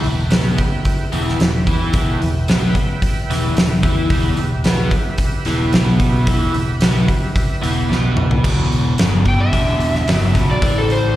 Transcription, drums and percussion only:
0.04 open hi-hat soft
0.30 snare loud
0.30 open hi-hat medium
0.58 kick medium
0.58 open hi-hat soft
0.85 kick medium
0.85 open hi-hat medium
1.13 open hi-hat medium
1.28 snare soft
1.40 snare loud
1.40 open hi-hat medium
1.67 kick loud
1.67 open hi-hat soft
1.93 kick loud
1.93 open hi-hat medium
2.22 open hi-hat soft
2.48 snare medium
2.48 open hi-hat medium
2.75 kick medium
2.75 open hi-hat soft
3.02 kick medium
3.02 open hi-hat medium
3.31 snare soft
3.31 open hi-hat medium
3.57 snare loud
3.57 open hi-hat medium
3.83 kick medium
3.83 open hi-hat medium
4.10 kick loud
4.10 open hi-hat medium
4.37 open hi-hat soft
4.64 snare loud
4.64 open hi-hat medium
4.91 kick medium
4.91 open hi-hat soft
5.18 kick medium
5.18 open hi-hat medium
5.45 snare soft
5.45 open hi-hat medium
5.73 snare loud
5.73 open hi-hat medium
6.00 kick medium
6.00 open hi-hat medium
6.27 kick loud
6.27 open hi-hat medium
6.54 open hi-hat soft
6.81 snare loud
6.81 open hi-hat medium
7.08 kick medium
7.08 open hi-hat soft
7.36 kick medium
7.36 open hi-hat medium
7.63 open hi-hat medium
7.92 snare soft
8.17 mid tom medium
8.31 floor tom medium
8.44 kick loud
8.44 crash loud
8.72 open hi-hat soft
8.98 snare loud
8.98 open hi-hat medium
9.25 kick medium
9.25 open hi-hat soft
9.53 kick medium
9.53 open hi-hat medium
9.80 open hi-hat medium
9.95 snare soft
10.08 snare loud
10.08 open hi-hat medium
10.35 kick medium
10.35 open hi-hat medium
10.62 kick loud
10.62 open hi-hat medium
10.90 open hi-hat soft

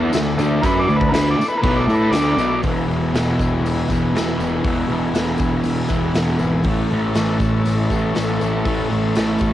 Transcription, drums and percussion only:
0.13 snare loud
0.13 tambourine loud
0.13 crash medium
0.39 tambourine medium
0.63 kick loud
0.63 tambourine medium
0.63 crash medium
0.90 tambourine soft
1.01 kick medium
1.14 snare loud
1.14 tambourine loud
1.14 crash medium
1.41 tambourine medium
1.63 kick loud
1.63 tambourine soft
1.63 crash medium
1.90 tambourine medium
2.13 snare loud
2.13 tambourine medium
2.13 crash medium
2.39 tambourine medium
2.63 kick loud
2.63 open hi-hat medium
2.63 tambourine soft
2.91 tambourine soft
3.15 snare loud
3.15 open hi-hat soft
3.15 tambourine medium
3.39 kick medium
3.39 tambourine medium
3.66 open hi-hat medium
3.66 tambourine medium
3.90 kick medium
3.90 tambourine medium
4.16 snare loud
4.16 open hi-hat medium
4.16 tambourine loud
4.40 tambourine medium
4.65 kick loud
4.65 open hi-hat medium
4.65 tambourine soft
4.91 tambourine soft
5.15 snare loud
5.15 open hi-hat medium
5.15 tambourine medium
5.38 kick loud
5.38 tambourine medium
5.64 open hi-hat medium
5.64 tambourine medium
5.89 kick medium
5.89 tambourine medium
6.14 snare loud
6.14 open hi-hat medium
6.14 tambourine medium
6.39 tambourine medium
6.64 kick loud
6.64 open hi-hat medium
6.64 tambourine soft
6.91 tambourine soft
7.14 snare loud
7.14 open hi-hat medium
7.14 tambourine medium
7.40 kick loud
7.40 tambourine medium
7.65 open hi-hat medium
7.65 tambourine medium
7.90 kick medium
7.90 tambourine medium
8.15 snare loud
8.15 open hi-hat medium
8.15 tambourine medium
8.41 tambourine medium
8.65 kick loud
8.65 open hi-hat medium
8.65 tambourine soft
8.90 tambourine soft
9.15 snare loud
9.15 open hi-hat medium
9.15 tambourine medium
9.38 kick medium
9.38 tambourine medium

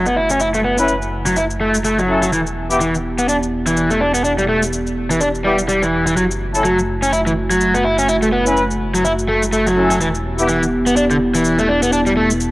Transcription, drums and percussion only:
0.06 shaker soft
0.30 shaker medium
0.40 shaker soft
0.54 shaker soft
0.78 shaker medium
0.88 shaker soft
1.02 shaker soft
1.26 shaker medium
1.36 shaker soft
1.50 shaker soft
1.74 shaker medium
1.85 shaker soft
1.99 shaker soft
2.23 shaker medium
2.33 shaker soft
2.47 shaker soft
2.71 shaker medium
2.81 shaker soft
2.95 shaker soft
3.18 shaker medium
3.29 shaker medium
3.43 shaker soft
3.67 shaker medium
3.77 shaker soft
3.91 shaker soft
4.15 shaker medium
4.25 shaker soft
4.38 shaker soft
4.63 shaker medium
4.73 shaker soft
4.87 shaker soft
5.11 shaker medium
5.21 shaker soft
5.35 shaker soft
5.59 shaker medium
5.69 shaker soft
5.83 shaker soft
6.07 shaker medium
6.17 shaker soft
6.31 shaker soft
6.55 shaker medium
6.65 shaker soft
6.79 shaker soft
7.03 shaker medium
7.13 shaker soft
7.27 shaker soft
7.51 shaker medium
7.61 shaker soft
7.75 shaker soft
7.99 shaker medium
8.09 shaker soft
8.23 shaker soft
8.47 shaker medium
8.57 shaker soft
8.71 shaker soft
8.95 shaker medium
9.05 shaker soft
9.19 shaker soft
9.43 shaker medium
9.53 shaker soft
9.67 shaker soft
9.91 shaker medium
10.01 shaker soft
10.15 shaker soft
10.39 shaker medium
10.49 shaker soft
10.63 shaker soft
10.87 shaker medium
10.97 shaker soft
11.10 shaker soft
11.35 shaker medium
11.44 shaker soft
11.58 shaker soft
11.82 shaker medium
11.93 shaker soft
12.06 shaker soft
12.30 shaker medium
12.40 shaker soft

